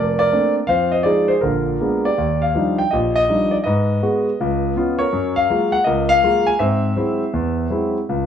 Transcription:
Already playing: F1 A#4 D5
0.19 A#4 D5
0.32 A3 A#3 C4 D4
0.67 F2 F3 C5 F5
0.92 C5 D#5
1.03 F3 G#3 D#4 G#4 D5
1.28 G#4 C5
1.41 A#1 D3 F4 A#4
1.81 G#3 A#3 B3 D4
2.05 G4 D5
2.18 D#2
2.42 F5
2.55 F3 G3 D4 D#4
2.78 G5
2.91 A#1 G4 D#5
3.16 D#5
3.29 F3 G3 D4 D#4
3.51 D5
3.64 G#2 B4 D#5
4.03 G#3 B3 F#4
4.40 C#2
4.76 B3 C#4 F4
4.99 A#4 C#5
5.13 F#2
5.36 F5
5.50 F#3 G#3 A#3 F4
5.72 F#5
5.84 C#2 A#4 D#5
6.09 F5
6.23 F#3 G#3 A#3 F4
6.47 G#5
6.59 G#2 C4 C5 E5
6.96 F#3 G#3 C4 E4
7.33 E2
7.70 F#3 G#3 C4 E4
8.09 C#2

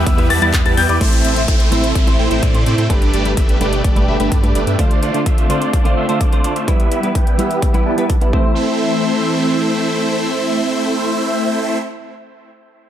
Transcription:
Already playing: E3 B3 G4
0.06 E2 G3 E4 E5 E6, kick, closed hi-hat
0.18 G3 B3 E4 B4, closed hi-hat
0.30 E2 G3 B3 E4 B4 A5 A6, cross-stick, open hi-hat
0.41 E2 G3 B3 E4 B4 A5 A6, closed hi-hat
0.53 kick, clap, closed hi-hat
0.65 E2 G3 B3 E4 B4 A5 A6, closed hi-hat
0.77 E2 G3 B3 E4 B4 G5 G6, open hi-hat
0.89 E2 G3 B3 E4 B4 D5 D6, closed hi-hat
1.00 A1 A2 C3 A3 C4 E4 C5 E5, kick, closed hi-hat, downlifter
1.13 closed hi-hat
1.25 A1 A3 C4 E4 C5 E5, closed hi-hat
1.36 A2 A3 C4 E4 C5, closed hi-hat
1.48 A1 A3 C4 E4 C5 G5, kick, closed hi-hat
1.60 closed hi-hat
1.71 A1 A2 A3 C4 E4 C5 E5, closed hi-hat
1.84 closed hi-hat
1.95 A1 A3 C4 E4 C5 E5, kick, closed hi-hat
2.07 A2 A3 C4 E4 C5, closed hi-hat
2.19 A1 A3 C4 E4 C5 G5
2.30 A1 A2 A3 C4 E4 C5 G5, closed hi-hat
2.43 A2 A3 C4 E4 C5 D5, kick, closed hi-hat
2.54 A2 A3 C4 E4 C5, closed hi-hat
2.66 A2 A3 C4 E4 C5 D5, closed hi-hat
2.78 A2 A3 C4 E4 C5 G5, closed hi-hat
2.89 G1 G2 B2 A3 D4 G4 B4 D5, kick, closed hi-hat
3.02 closed hi-hat
3.14 G1 A3 D4 G4 B4 D5, closed hi-hat
3.25 G2 A3 D4 G4 B4, closed hi-hat
3.37 G1 A3 D4 G4 B4 E5, kick, closed hi-hat
3.49 closed hi-hat
3.60 G1 G2 A3 D4 G4 B4 D5, closed hi-hat
3.73 closed hi-hat
3.84 G1 A3 D4 G4 B4 D5, kick, closed hi-hat
3.95 G2 A3 D4 G4 B4, closed hi-hat
4.08 G1 A3 D4 G4 B4 E5
4.19 G1 G2 A3 D4 G4 B4 E5, closed hi-hat
4.32 G2 A3 D4 G4 B4 D5, kick, closed hi-hat
4.43 G2 A3 D4 G4 B4, closed hi-hat
4.55 G1 A3 D4 G4 B4 D5, closed hi-hat
4.67 G2 A3 D4 G4 B4 E5, closed hi-hat
4.78 D3 A3 C4 D4 F4 C5 D5, kick, closed hi-hat
4.91 closed hi-hat
5.03 A3 D4 F4 C5 D5, closed hi-hat
5.14 D3 A3 D4 F4 C5, closed hi-hat
5.26 A3 D4 F4 C5 E5, kick, closed hi-hat
5.38 closed hi-hat
5.49 D3 A3 D4 F4 C5 D5, closed hi-hat
5.62 closed hi-hat
5.73 kick, closed hi-hat
5.85 D3 A3 D4 F4 C5, closed hi-hat
5.97 A3 D4 F4 C5 E5
6.08 D3 A3 D4 F4 C5 E5, closed hi-hat
6.21 A3 D4 C5 D5, kick, closed hi-hat
6.32 D3 A3 D4 F4 C5, closed hi-hat
6.44 A3 D4 F4 C5 D5, closed hi-hat
6.56 A3 D4 F4 C5 E5, closed hi-hat
6.67 E3 G3 B3 E4 G4 B4 E5, kick, closed hi-hat
6.80 closed hi-hat
6.91 G3 B3 E4 B4 E5, closed hi-hat
7.03 G3 B3 E4 B4, closed hi-hat
7.15 G3 B3 E4 B4 G5, kick, closed hi-hat
7.27 closed hi-hat
7.38 G3 B3 E4 B4 E5, closed hi-hat
7.51 closed hi-hat
7.62 G3 B3 E4 B4 E5, kick, closed hi-hat
7.74 G3 B3 E4 B4, closed hi-hat
7.86 G3 B3 E4 B4 A5
7.97 G3 B3 E4 B4 A5, closed hi-hat
8.10 kick, closed hi-hat
8.21 G3 B3 E4 B4 A5, closed hi-hat
8.31 E3 A3 C4 E4 A4 C5 E5, kick

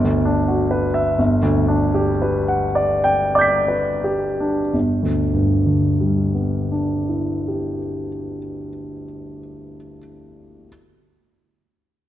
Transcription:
Already playing: G1
0.04 D2
0.25 D4
0.48 F#4
0.71 B4
0.94 E5
1.18 G1
1.42 D2
1.68 D4
1.94 G4
2.22 B4
2.48 F#5
2.75 D5
3.04 G5
3.35 D5 D6 G6
3.41 B6
3.68 B4
4.04 G4
4.40 D4
4.73 G1
5.03 D2
5.33 G2
5.66 D3
6.00 G3
6.34 B3
6.72 D4
7.09 E4
7.48 G4

